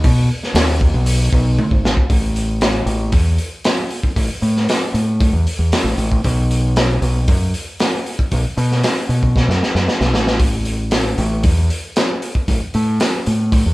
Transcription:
0.04 0.29 B2 loud
0.04 kick loud
0.04 open hi-hat medium
0.43 snare soft
0.54 0.91 D#2 loud
0.54 snare loud
0.54 open hi-hat medium
0.81 kick medium
0.94 1.30 B1 loud
1.06 open hi-hat medium
1.33 1.57 B1 medium
1.33 kick medium
1.59 high tom medium
1.71 1.95 G#1 loud
1.71 kick medium
1.85 snare medium
1.97 kick medium
2.10 2.83 A1 medium
2.10 kick loud
2.10 open hi-hat medium
2.36 open hi-hat medium
2.61 snare loud
2.61 open hi-hat medium
2.86 3.11 A1 medium
2.86 open hi-hat medium
3.12 3.37 E2 medium
3.12 kick loud
3.12 open hi-hat medium
3.38 open hi-hat medium
3.64 snare loud
3.64 open hi-hat medium
3.90 open hi-hat soft
4.03 kick medium
4.16 4.29 A1 medium
4.16 kick medium
4.16 open hi-hat medium
4.42 4.67 A2 medium
4.42 open hi-hat medium
4.57 snare soft
4.69 snare loud
4.69 open hi-hat medium
4.94 5.31 A2 medium
4.94 open hi-hat medium
5.21 kick loud
5.21 open hi-hat medium
5.33 5.45 E2 medium
5.47 open hi-hat medium
5.59 5.71 E2 medium
5.72 snare loud
5.72 open hi-hat medium
5.84 5.97 A1 loud
5.98 6.22 A1 medium
5.98 open hi-hat medium
6.12 kick medium
6.24 6.98 B1 medium
6.24 kick loud
6.24 open hi-hat medium
6.51 open hi-hat soft
6.76 snare loud
6.76 open hi-hat medium
7.02 7.26 B1 medium
7.02 open hi-hat medium
7.28 7.52 F#2 medium
7.28 kick loud
7.28 open hi-hat medium
7.54 open hi-hat medium
7.80 snare loud
7.80 open hi-hat medium
8.06 open hi-hat soft
8.19 kick medium
8.32 8.44 B1 medium
8.32 kick medium
8.32 open hi-hat medium
8.57 8.82 B2 medium
8.57 open hi-hat medium
8.72 snare soft
8.84 snare loud
8.84 open hi-hat medium
9.09 9.46 B2 medium
9.09 open hi-hat medium
9.23 kick medium
9.36 kick loud
9.36 snare medium
9.48 9.60 F#2 medium
9.48 snare medium
9.63 snare medium
9.75 9.87 F#2 medium
9.75 snare medium
9.88 snare medium
10.01 10.14 B1 medium
10.01 snare medium
10.14 11.14 A1 medium
10.14 snare medium
10.27 snare medium
10.40 kick loud
10.40 open hi-hat medium
10.65 open hi-hat medium
10.91 snare loud
10.91 open hi-hat medium
11.18 11.42 A1 medium
11.18 open hi-hat medium
11.43 11.68 E2 medium
11.43 kick loud
11.43 open hi-hat medium
11.70 open hi-hat medium
11.96 snare loud
11.96 open hi-hat medium
12.22 open hi-hat medium
12.35 kick medium
12.48 12.60 A1 medium
12.48 kick loud
12.48 open hi-hat medium
12.74 12.99 A2 medium
12.74 open hi-hat soft
13.00 snare loud
13.00 open hi-hat medium
13.26 13.63 A2 medium
13.26 open hi-hat medium
13.52 kick loud
13.52 open hi-hat medium
13.66 13.74 E2 medium

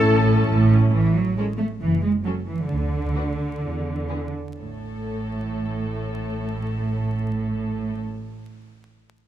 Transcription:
0.00 0.43 A2 medium
0.00 0.68 A3 medium
0.00 0.26 C#4 medium
0.00 0.25 E4 medium
0.00 0.68 A4 medium
0.00 0.71 A4 loud
0.00 0.71 A4 medium
0.00 0.70 C#5 medium
0.00 0.69 A5 loud
0.04 0.43 A1 medium
0.26 0.70 C#4 medium
0.26 0.70 E4 medium
0.49 0.88 A1 medium
0.49 0.88 A2 medium
0.71 0.93 C#4 medium
0.71 0.93 E4 medium
0.93 1.30 A1 medium
0.93 1.14 E3 medium
1.15 1.37 F#3 medium
1.37 1.45 G#3 medium
1.37 1.46 C#4 soft
1.37 1.45 A4 soft
1.37 1.46 C#5 soft
1.58 1.66 A3 medium
1.81 2.18 F#1 medium
1.81 2.03 E3 medium
2.03 2.11 G#3 medium
2.25 2.33 F#3 medium
2.25 2.34 C#4 soft
2.25 2.34 A4 soft
2.25 2.34 C#5 soft
2.47 2.69 E3 medium
2.70 3.07 D2 medium
2.70 4.30 D3 medium
3.14 3.22 D4 soft
3.14 3.23 F#4 soft
3.14 3.23 B4 soft
3.61 4.01 E2 medium
4.09 4.17 B3 soft
4.09 4.17 G#4 soft
4.09 4.17 B4 soft
4.58 7.97 A1 soft
4.58 7.97 A2 soft
4.58 7.98 A3 soft
4.58 7.98 A4 soft
4.58 7.97 C#5 soft

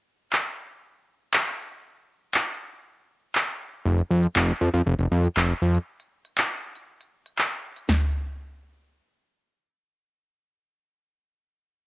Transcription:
0.33 clap loud
1.34 clap loud
2.34 clap loud
3.35 clap loud
3.85 4.02 F1 loud
3.98 closed hi-hat medium
4.11 4.27 F2 medium
4.23 closed hi-hat medium
4.36 4.52 F1 loud
4.36 clap loud
4.49 closed hi-hat medium
4.61 4.69 F2 medium
4.74 4.82 F2 loud
4.74 closed hi-hat medium
4.86 4.95 F1 loud
4.99 5.07 F1 medium
4.99 closed hi-hat medium
5.12 5.28 F2 medium
5.24 closed hi-hat medium
5.37 5.53 F1 loud
5.37 clap loud
5.49 closed hi-hat medium
5.62 5.78 F2 loud
5.75 closed hi-hat medium
6.00 closed hi-hat medium
6.25 closed hi-hat medium
6.38 clap loud
6.50 closed hi-hat soft
6.75 closed hi-hat medium
7.01 closed hi-hat medium
7.26 closed hi-hat medium
7.38 clap loud
7.51 closed hi-hat medium
7.76 closed hi-hat medium
7.89 snare medium
7.89 floor tom loud
7.89 open hi-hat medium

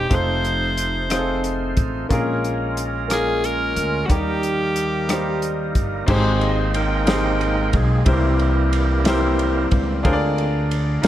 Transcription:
0.00 0.14 G#2 medium
0.00 0.09 C4 medium
0.00 0.10 D#4 medium
0.00 0.13 G4 medium
0.00 0.17 G4 medium
0.00 0.14 G#4 medium
0.00 0.12 C5 medium
0.00 0.14 D#5 medium
0.00 0.14 G5 soft
0.09 1.73 F1 medium
0.09 2.08 A3 medium
0.09 0.78 C4 medium
0.09 0.78 D#4 medium
0.09 2.07 D#4 soft
0.09 0.78 F4 soft
0.09 2.08 F4 soft
0.09 0.79 A4 medium
0.09 2.07 C5 medium
0.09 0.79 C5 medium
0.09 kick medium
0.09 closed hi-hat medium
0.15 1.46 C5 medium
0.45 closed hi-hat soft
0.78 closed hi-hat medium
1.10 1.78 C4 medium
1.10 1.78 D#4 medium
1.10 1.79 F4 medium
1.10 1.18 G#4 soft
1.10 1.79 C5 medium
1.10 cross-stick medium
1.10 closed hi-hat medium
1.18 1.82 A4 medium
1.44 closed hi-hat soft
1.77 2.08 A1 medium
1.77 kick medium
1.77 closed hi-hat medium
2.09 3.73 A#1 medium
2.09 3.06 A#2 medium
2.09 4.07 G#3 medium
2.09 2.77 A#3 medium
2.09 2.78 C#4 medium
2.09 4.06 C#4 medium
2.09 2.78 F4 medium
2.09 4.06 F4 medium
2.09 2.79 G#4 medium
2.09 4.06 A#4 medium
2.09 2.79 A#4 medium
2.09 kick medium
2.09 closed hi-hat medium
2.44 closed hi-hat soft
2.77 closed hi-hat medium
3.08 3.77 A#3 medium
3.08 3.77 C#4 soft
3.08 3.77 F4 soft
3.08 3.78 G#4 soft
3.08 3.78 A#4 medium
3.08 cross-stick medium
3.08 closed hi-hat medium
3.13 3.47 G#4 medium
3.44 4.07 A#4 medium
3.44 closed hi-hat soft
3.76 4.07 D2 medium
3.76 closed hi-hat medium
4.06 5.71 D#2 medium
4.06 5.05 D#3 soft
4.06 4.76 G3 medium
4.06 4.77 A#3 soft
4.06 4.77 D#4 soft
4.06 4.13 F#4 soft
4.06 kick medium
4.06 closed hi-hat medium
4.11 6.06 G3 medium
4.11 6.05 A#3 soft
4.11 6.05 D#4 soft
4.11 4.78 G4 medium
4.11 5.43 G4 medium
4.11 4.17 G#4 soft
4.11 4.78 A#4 medium
4.18 6.09 A#4 medium
4.43 closed hi-hat soft
4.76 closed hi-hat medium
5.09 5.76 G3 medium
5.09 5.76 A#3 medium
5.09 5.77 D#4 medium
5.09 5.78 G4 medium
5.09 5.78 C5 medium
5.09 cross-stick medium
5.09 closed hi-hat medium
5.42 closed hi-hat soft
5.75 6.06 G1 medium
5.75 kick medium
5.75 closed hi-hat medium
6.07 7.70 G#1 loud
6.07 7.04 G#2 medium
6.07 8.03 G#3 soft
6.07 8.03 A#3 medium
6.07 6.75 C4 medium
6.07 8.03 C4 medium
6.07 6.75 D#4 medium
6.07 6.75 G4 medium
6.07 6.76 G#4 medium
6.07 6.76 C5 medium
6.07 kick loud
6.07 crash medium
6.41 6.59 D#5 medium
6.41 ride soft
6.59 6.76 C5 medium
6.74 7.71 D#4 medium
6.74 7.78 A#4 medium
6.74 7.70 G5 medium
6.74 ride medium
7.06 7.74 C4 medium
7.06 7.74 D#4 medium
7.06 7.75 G4 medium
7.06 7.75 G#4 medium
7.06 7.75 C5 medium
7.06 snare medium
7.06 ride medium
7.41 ride soft
7.73 8.04 B1 medium
7.73 8.05 G#4 medium
7.73 kick medium
7.73 ride medium
8.05 9.68 C2 loud
8.05 9.02 C3 medium
8.05 10.00 E3 medium
8.05 10.01 G3 soft
8.05 10.01 A#3 medium
8.05 8.73 C4 medium
8.05 8.73 E4 medium
8.05 9.69 E4 medium
8.05 8.74 G4 medium
8.05 9.69 G4 medium
8.05 8.74 A#4 medium
8.05 9.69 A#4 medium
8.05 8.75 C5 medium
8.05 kick loud
8.05 ride medium
8.39 ride soft
8.73 ride medium
9.04 9.72 C4 medium
9.04 9.73 E4 medium
9.04 9.73 G4 medium
9.04 9.73 A#4 medium
9.04 9.74 C5 medium
9.04 snare medium
9.04 ride medium
9.39 ride soft
9.71 10.02 C#2 medium
9.71 kick medium
9.71 ride medium
10.03 11.00 D2 loud
10.03 10.48 D3 medium
10.03 11.00 D3 medium
10.03 10.48 G#3 soft
10.03 10.48 C4 medium
10.03 10.71 D4 medium
10.03 10.71 F4 medium
10.03 10.72 G#4 medium
10.03 10.72 A#4 medium
10.03 10.12 C5 medium
10.03 kick loud
10.03 ride medium
10.13 10.76 D5 loud
10.38 ride soft
10.71 ride medium
11.02 11.07 D#2 medium
11.02 11.07 C#3 medium
11.02 11.07 F3 medium
11.02 11.07 D#4 medium
11.02 11.07 F4 medium
11.02 11.07 G#4 medium
11.02 11.07 A#4 medium
11.02 ride medium

